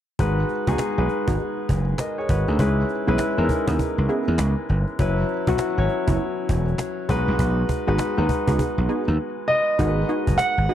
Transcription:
0.19 slap bass G#1, grand piano G#3 D#4 F#4 B4, cajon bass
0.49 cajon slap
0.67 slap bass C#2, grand piano G#3 D#4 F#4 G#4, analog polysynth B3 D#4 F#4 G#4, cajon bass
0.78 cajon slap
0.98 slap bass B1, grand piano G#3 D#4 F#4 B4
1.09 cajon slap
1.27 slap bass G#1, analog polysynth B3 D#4 F#4 G#4, cajon bass
1.39 cajon slap
1.69 slap bass F#1, cajon bass
1.88 cajon slap
1.98 grand piano A#4 D#5, cajon slap
2.18 grand piano G#4 C#5
2.29 slap bass G#1, grand piano F#4 B4, cajon bass
2.48 slap bass D2, grand piano D#4 G#4, cajon slap
2.59 slap bass C#2, grand piano G#3 C#4 E4 B4, cajon bass
2.89 cajon slap
3.07 slap bass B1, grand piano G#3 C#4 E4 B4, analog polysynth B3 C#4 E4 G#4, cajon slap
3.18 cajon slap
3.37 slap bass E2, grand piano G#3 C#4 D#4 A#4
3.45 grand piano E4
3.49 cajon bass
3.67 slap bass D#2, analog polysynth B3 C#4 E4 G#4, cajon bass
3.79 cajon bass
3.98 slap bass C#2
4.09 analog polysynth B3 C#4 E4 G#4, cajon slap
4.28 slap bass E2, cajon slap
4.38 slap bass C#2, cajon slap
4.69 slap bass G1, cajon slap
4.88 cajon slap
4.99 slap bass F#1, grand piano F#3 C#4 E4 B4, cajon bass
5.29 cajon slap
5.47 slap bass B1, grand piano F#3 C#4 E4 F#4, analog polysynth B3 C#4 E4 F#4, cajon bass
5.58 muted slap bass stroke, cajon slap
5.77 slap bass G#1, grand piano F#3 C#4 E4 C#5
5.89 cajon slap
6.07 slap bass F#1, analog polysynth B3 C#4 E4 F#4, cajon bass
6.49 slap bass E1, cajon bass
6.68 cajon slap
6.78 cajon slap
7.09 slap bass B1, grand piano G#3 D#4 F#4 B4, cajon bass
7.28 slap bass C2, cajon slap
7.39 slap bass B1, cajon bass
7.69 cajon bass, cajon slap
7.87 slap bass G#1, grand piano G#3 D#4 F#4 B4, analog polysynth B3 D#4 F#4 G#4, cajon slap
7.98 muted slap bass stroke, cajon slap
8.17 slap bass D#2, grand piano G#3 D#4 F#4 B4
8.29 cajon bass
8.47 slap bass C#2, analog polysynth B3 D#4 F#4 G#4, cajon bass
8.59 cajon bass
8.78 slap bass B1
8.89 analog polysynth B3 D#4 F#4 G#4, cajon slap
9.08 slap bass D#2, cajon slap
9.48 grand piano D#5
9.79 slap bass G#1, grand piano G#3 D#4 F#4 A#4, analog polysynth B3 D#4 F#4 G#4, cajon bass
9.87 grand piano B4
10.09 analog polysynth B3 D#4 F#4 G#4, cajon slap
10.27 slap bass F#1, cajon bass
10.38 grand piano F#5, cajon slap
10.58 slap bass G#1
10.69 analog polysynth B3 D#4 F#4 G#4, cajon slap

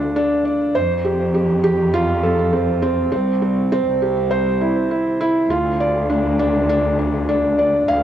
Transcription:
Already playing: cello section D2, felt piano D4 F4 A4 D5
0.16 felt piano D4
0.45 felt piano D5
0.74 cello section F2, felt piano C5
1.04 felt piano G4
1.34 felt piano G4
1.64 felt piano G4
1.94 felt piano F4
2.23 felt piano A4
2.53 felt piano C4
2.82 felt piano C4
3.12 cello section C2, felt piano C4
3.42 felt piano C4
3.72 felt piano C4
3.86 cello section C2
4.02 felt piano G4
4.31 felt piano C5
4.61 felt piano E4
4.91 felt piano E4
5.21 felt piano E4
5.50 cello section D2, felt piano F4
5.80 felt piano D5
6.10 felt piano D4
6.39 felt piano D4
6.69 felt piano D4
6.99 felt piano D4
7.29 felt piano D4
7.58 felt piano D5
7.88 cello section D2, felt piano F5

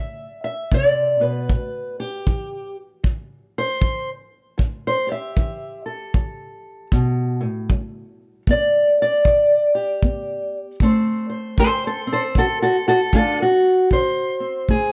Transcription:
Already playing: steel-string acoustic guitar D3 E5
0.44 steel-string acoustic guitar E5
0.72 steel-string acoustic guitar C3 D5, kick
1.20 steel-string acoustic guitar B2 B4
1.49 steel-string acoustic guitar A2, kick
2.00 steel-string acoustic guitar G4
2.27 steel-string acoustic guitar E3, kick
3.04 steel-string acoustic guitar E3, kick
3.58 steel-string acoustic guitar C5
3.81 steel-string acoustic guitar E3, kick
4.58 steel-string acoustic guitar A2, kick
4.87 steel-string acoustic guitar C5
5.07 steel-string acoustic guitar G4
5.12 steel-string acoustic guitar E5
5.36 steel-string acoustic guitar E3, kick
5.86 steel-string acoustic guitar A4
6.14 steel-string acoustic guitar E3, kick
6.92 steel-string acoustic guitar B2, kick
7.41 steel-string acoustic guitar A2
7.70 steel-string acoustic guitar G3, kick
8.47 steel-string acoustic guitar B3 D5, kick
9.02 steel-string acoustic guitar D5
9.25 steel-string acoustic guitar D3, kick
9.75 steel-string acoustic guitar G4
10.03 steel-string acoustic guitar B3, kick
10.80 steel-string acoustic guitar D3 A3 C4 C5, kick
11.30 steel-string acoustic guitar C5
11.58 steel-string acoustic guitar A3 A4 C5, kick
11.87 steel-string acoustic guitar A4 C5
12.07 steel-string acoustic guitar C4
12.12 steel-string acoustic guitar A4 C5
12.35 steel-string acoustic guitar A2 F#4 A4, kick
12.62 steel-string acoustic guitar F#4 A4
12.88 steel-string acoustic guitar F#4 A4
13.13 steel-string acoustic guitar A3 D4 F4 A4, kick
13.42 steel-string acoustic guitar F#4
13.91 steel-string acoustic guitar D3 C5, kick
14.40 steel-string acoustic guitar C4
14.69 steel-string acoustic guitar A3 G#4, kick

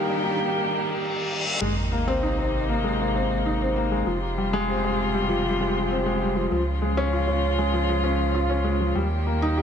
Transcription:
Already playing: string quartet D#3 G3 A#3 G4, felt piano A#3 D#4 G4 A#4, riser
0.24 felt piano G4
0.38 reverse cymbal
1.61 sub bass G#1, string quartet C3 A#3 D#4, felt piano G#3, sub drop
1.92 felt piano A#3
2.08 felt piano C4
2.23 felt piano D#4
2.38 felt piano C4
2.69 felt piano A#3
2.84 felt piano G#3
3.01 felt piano A#3
3.16 felt piano C4
3.46 felt piano D#4
3.61 felt piano C4
3.76 felt piano A#3
3.92 felt piano G#3
4.05 sub bass F1, string quartet C3 F4 G4, felt piano F3
4.38 felt piano G3
4.53 felt piano G#3
4.69 felt piano C4
4.84 felt piano G#3
5.14 felt piano G3
5.29 felt piano F3
5.46 felt piano G3
5.61 felt piano G#3
5.91 felt piano C4
6.06 felt piano G#3
6.21 felt piano G3
6.36 felt piano F3
6.50 sub bass C#2, string quartet C#3 F3 F4, felt piano F3
6.82 felt piano G#3
6.97 felt piano C#4
7.13 felt piano F4
7.28 felt piano C#4
7.58 felt piano G#3
7.74 felt piano F3
7.89 felt piano G#3
8.04 felt piano C#4
8.35 felt piano F4
8.50 felt piano C#4
8.64 felt piano G#3
8.80 felt piano F3
8.95 sub bass D#2, string quartet D#3 G3 A#3 G4, felt piano G3
9.27 felt piano A#3
9.42 felt piano D#4
9.58 felt piano G4

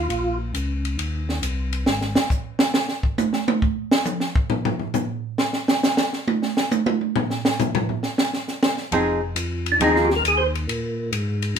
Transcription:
Already playing: tonewheel organ F4
0.09 tonewheel organ A#1, ride
0.54 tonewheel organ C#2, hi-hat pedal, ride
0.85 ride
0.98 tonewheel organ D#2, ride
1.29 snare
1.42 tonewheel organ C2, hi-hat pedal, ride
1.73 ride
1.86 tonewheel organ G#1, snare
2.01 snare
2.15 snare
2.30 kick, hi-hat pedal
2.59 snare
2.74 snare
2.88 snare
3.03 kick
3.18 hi-hat pedal, high tom
3.33 snare
3.48 high tom
3.62 kick
3.91 snare
4.06 hi-hat pedal, mid tom
4.20 snare
4.35 kick
4.50 floor tom
4.65 floor tom
4.79 floor tom
4.94 floor tom, hi-hat pedal
5.38 snare
5.53 snare
5.68 snare
5.83 snare, hi-hat pedal
5.97 snare
6.13 snare
6.28 high tom
6.42 snare
6.57 snare
6.71 hi-hat pedal, high tom
6.86 high tom
7.01 high tom
7.16 floor tom
7.30 snare
7.45 snare
7.60 floor tom, hi-hat pedal
7.75 floor tom
7.89 floor tom
8.03 snare
8.18 snare
8.33 snare
8.48 snare, hi-hat pedal
8.63 snare
8.77 snare
8.91 tonewheel organ F1, hollow-body jazz guitar F3 C4 D#4 G#4, ride
9.35 tonewheel organ F2, hi-hat pedal, ride
9.66 ride
9.72 tonewheel organ D4
9.80 tonewheel organ D#2, hollow-body jazz guitar F3 C4 D#4 G#4, ride
9.84 tonewheel organ D#4
9.96 tonewheel organ F4, snare
10.05 tonewheel organ G4
10.10 snare
10.16 tonewheel organ A#4
10.23 tonewheel organ D#2, hi-hat pedal, ride
10.28 tonewheel organ G#4
10.37 tonewheel organ C5
10.55 ride
10.67 tonewheel organ A#2, ride
11.11 tonewheel organ G#2, hi-hat pedal, ride
11.42 ride
11.55 tonewheel organ G2

